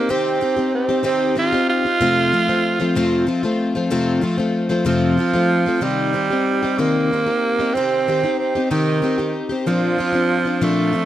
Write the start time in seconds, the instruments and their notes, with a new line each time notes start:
Already playing: tenor saxophone A#3
0.09 twelve-string acoustic guitar C3 D#3 C4 D#4 G4, tenor saxophone C4
0.41 twelve-string acoustic guitar D#3 C4 D#4 G4
0.56 twelve-string acoustic guitar C4 D#4 G4
0.74 tenor saxophone C4
0.89 twelve-string acoustic guitar C4 D#4 G4
1.03 twelve-string acoustic guitar C3 D#3 C4 D#4 G4, tenor saxophone C4
1.36 twelve-string acoustic guitar D#3 C4 D#4 G4, tenor saxophone F4
1.52 twelve-string acoustic guitar C4 D#4 G4
1.69 tenor saxophone F4
1.85 twelve-string acoustic guitar C4 D#4 G4
2.01 twelve-string acoustic guitar F2 C3 F3 A3 C4 F4
2.32 twelve-string acoustic guitar F3 A3 C4 F4
2.48 twelve-string acoustic guitar F3 A3 C4 F4
2.80 twelve-string acoustic guitar F3 A3 C4 F4
2.95 twelve-string acoustic guitar F2 C3 F3 A3 C4 F4
3.27 twelve-string acoustic guitar F3 A3 C4 F4
3.43 twelve-string acoustic guitar F3 A3 C4 F4
3.75 twelve-string acoustic guitar F3 A3 C4 F4
3.90 twelve-string acoustic guitar F2 C3 F3 A3 C4 F4
4.21 twelve-string acoustic guitar F3 A3 C4 F4
4.38 twelve-string acoustic guitar F3 A3 C4 F4
4.69 twelve-string acoustic guitar F3 A3 C4 F4
4.85 twelve-string acoustic guitar F2 C3 F3 A3 C4 F4, tenor saxophone F3
5.18 twelve-string acoustic guitar F3 A3 C4 F4
5.34 twelve-string acoustic guitar F3 A3 C4 F4
5.66 twelve-string acoustic guitar F3 A3 C4 F4
5.81 twelve-string acoustic guitar C3 D#3 C4 D#4 G4, tenor saxophone G3
6.13 twelve-string acoustic guitar D#3 C4 D#4 G4
6.30 twelve-string acoustic guitar C4 D#4 G4
6.63 twelve-string acoustic guitar C4 D#4 G4
6.78 twelve-string acoustic guitar C3 D#3 C4 D#4 G4, tenor saxophone A#3
7.12 twelve-string acoustic guitar D#3 C4 D#4 G4
7.26 twelve-string acoustic guitar C4 D#4 G4
7.59 twelve-string acoustic guitar C4 D#4 G4
7.74 twelve-string acoustic guitar C3 D#3 C4 D#4 G4, tenor saxophone C4
8.08 twelve-string acoustic guitar D#3 C4 D#4 G4
8.23 twelve-string acoustic guitar C4 D#4 G4
8.39 tenor saxophone C4
8.55 twelve-string acoustic guitar C4 D#4 G4
8.71 twelve-string acoustic guitar C3 D#3 C4 D#4 G4, tenor saxophone D#3
9.02 twelve-string acoustic guitar D#3 C4 D#4 G4
9.18 twelve-string acoustic guitar C4 D#4 G4
9.49 twelve-string acoustic guitar C4 D#4 G4
9.66 twelve-string acoustic guitar A#2 F3 C4 D4 F4, tenor saxophone F3
9.98 twelve-string acoustic guitar F3 C4 D4 F4
10.13 twelve-string acoustic guitar C4 D4 F4
10.45 twelve-string acoustic guitar C4 D4 F4
10.61 twelve-string acoustic guitar A#2 F3 C4 D4 F4, tenor saxophone A3
10.93 twelve-string acoustic guitar F3 C4 D4 F4